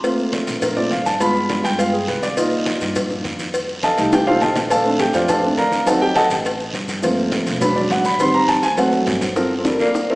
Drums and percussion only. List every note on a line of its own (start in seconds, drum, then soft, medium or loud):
0.04 cowbell loud
0.04 high conga soft
0.04 long guiro medium
0.04 maracas medium
0.18 high conga soft
0.18 maracas soft
0.33 cowbell medium
0.33 high conga loud
0.33 short guiro medium
0.33 maracas soft
0.47 cowbell medium
0.47 high conga soft
0.47 short guiro medium
0.47 maracas medium
0.62 cowbell loud
0.62 high conga soft
0.62 low conga medium
0.62 long guiro medium
0.62 maracas medium
0.77 high conga soft
0.77 low conga medium
0.77 maracas soft
0.91 cowbell medium
0.91 high conga medium
0.91 short guiro medium
0.91 maracas soft
1.06 high conga medium
1.06 short guiro medium
1.06 maracas medium
1.20 cowbell loud
1.20 high conga soft
1.20 long guiro medium
1.20 maracas medium
1.35 high conga soft
1.35 maracas soft
1.50 cowbell medium
1.50 high conga loud
1.50 short guiro medium
1.50 maracas soft
1.64 cowbell medium
1.64 high conga soft
1.64 short guiro medium
1.64 maracas medium
1.78 cowbell loud
1.78 high conga soft
1.78 long guiro medium
1.78 maracas medium
1.93 high conga soft
1.93 maracas soft
2.08 cowbell medium
2.08 high conga medium
2.08 short guiro medium
2.08 maracas soft
2.22 cowbell medium
2.22 high conga medium
2.22 short guiro medium
2.22 maracas medium
2.37 cowbell loud
2.37 high conga soft
2.37 long guiro medium
2.37 maracas medium
2.52 high conga soft
2.52 maracas soft
2.66 cowbell medium
2.66 high conga medium
2.66 short guiro medium
2.66 maracas soft
2.81 cowbell medium
2.81 high conga soft
2.81 short guiro medium
2.81 maracas medium
2.95 cowbell loud
2.95 high conga soft
2.95 low conga medium
2.95 maracas medium
3.10 high conga soft
3.10 low conga medium
3.10 maracas soft
3.24 cowbell medium
3.24 high conga medium
3.24 short guiro medium
3.24 maracas soft
3.39 high conga medium
3.39 short guiro medium
3.39 maracas medium
3.54 cowbell loud
3.54 high conga soft
3.54 long guiro medium
3.54 maracas medium
3.69 high conga soft
3.69 maracas soft
3.83 cowbell medium
3.83 high conga loud
3.83 short guiro medium
3.83 maracas soft
3.98 cowbell medium
3.98 high conga soft
3.98 short guiro medium
3.98 maracas medium
4.12 cowbell loud
4.12 high bongo loud
4.12 long guiro medium
4.12 maracas medium
4.27 high bongo loud
4.27 maracas soft
4.41 cowbell medium
4.41 low bongo medium
4.41 high conga medium
4.41 short guiro medium
4.41 maracas soft
4.55 cowbell medium
4.55 low bongo medium
4.55 high conga medium
4.55 short guiro medium
4.55 maracas medium
4.70 cowbell loud
4.70 high conga soft
4.70 long guiro medium
4.70 maracas medium
4.85 high conga soft
4.85 maracas soft
4.99 cowbell medium
4.99 high conga loud
4.99 short guiro medium
4.99 maracas soft
5.13 cowbell medium
5.13 high conga soft
5.13 short guiro medium
5.13 maracas medium
5.28 cowbell loud
5.28 high conga soft
5.28 low conga medium
5.28 long guiro medium
5.28 maracas medium
5.43 high conga soft
5.43 maracas soft
5.57 cowbell medium
5.57 high conga medium
5.57 short guiro medium
5.57 maracas soft
5.72 high conga medium
5.72 short guiro medium
5.72 maracas medium
5.87 cowbell loud
5.87 high conga soft
5.87 long guiro medium
5.87 maracas medium
6.01 high conga soft
6.01 maracas soft
6.15 cowbell medium
6.15 high conga loud
6.15 short guiro medium
6.15 maracas soft
6.30 cowbell medium
6.30 high conga soft
6.30 short guiro medium
6.30 maracas medium
6.45 cowbell loud
6.45 high conga soft
6.45 long guiro medium
6.45 maracas medium
6.60 high conga soft
6.60 maracas soft
6.74 cowbell medium
6.74 high conga medium
6.74 short guiro medium
6.74 maracas soft
6.88 cowbell medium
6.88 high conga medium
6.88 short guiro medium
6.88 maracas medium
7.03 cowbell loud
7.03 high conga soft
7.03 long guiro medium
7.03 maracas medium
7.17 high conga soft
7.17 maracas soft
7.32 cowbell medium
7.32 high conga loud
7.32 short guiro medium
7.32 maracas soft
7.46 cowbell medium
7.46 high conga soft
7.46 short guiro medium
7.46 maracas medium
7.61 cowbell loud
7.61 high conga soft
7.61 low conga loud
7.61 long guiro medium
7.61 maracas loud
7.76 high conga soft
7.76 low conga medium
7.76 maracas soft
7.90 cowbell medium
7.90 high conga medium
7.90 short guiro medium
7.90 maracas soft
8.04 high conga medium
8.04 short guiro medium
8.04 maracas medium
8.19 cowbell loud
8.19 high conga soft
8.19 long guiro medium
8.19 maracas medium
8.34 high conga soft
8.34 maracas soft
8.48 cowbell medium
8.48 high conga medium
8.48 short guiro medium
8.48 maracas soft
8.63 cowbell medium
8.63 high conga soft
8.63 short guiro medium
8.63 maracas medium
8.77 cowbell loud
8.77 high conga soft
8.77 long guiro medium
8.77 maracas loud
8.92 high conga medium
8.92 maracas soft
9.07 cowbell medium
9.07 low conga medium
9.07 short guiro medium
9.07 maracas soft
9.21 cowbell medium
9.21 low conga medium
9.21 short guiro medium
9.21 maracas medium
9.36 high bongo medium
9.36 high conga soft
9.36 long guiro medium
9.36 maracas medium
9.50 high conga soft
9.65 high bongo medium
9.65 high conga medium
9.65 short guiro medium
9.65 maracas medium
9.80 high conga soft
9.80 short guiro medium
9.80 maracas soft
9.94 high bongo medium
9.94 high conga soft
9.94 long guiro medium
9.94 maracas medium
10.09 high conga soft